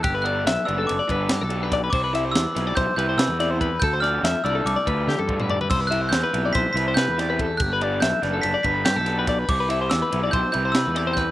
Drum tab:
CC |------------------|x-----------------|------------------|x-----------------|
RD |x-x-x-x-x-x-x-x-x-|--x-x-x-x-x-x-x-x-|x-x-x-x-x-x-------|x-x-x-x-x-x-x-x-x-|
SD |----o-------o---o-|--o-o-o-o---o-o---|--o-o-------o-----|----o---o-o-o-o---|
T1 |------------------|------------------|-------------o----|------------------|
T2 |------------------|------------------|---------------o--|------------------|
FT |------------------|------------------|----------------oo|------------------|
BD |o---------o-----o-|o-------o-------o-|o---------o---o---|o-------o-------o-|

CC |------------------|x-----------------|
RD |x-x-x-x-x-x-x-x-x-|--x-x-x-x-x-x-x-x-|
SD |----o-o-----o-o-o-|----o-------o---o-|
T1 |------------------|------------------|
T2 |------------------|------------------|
FT |------------------|------------------|
BD |o---------o-----o-|o-------o-------o-|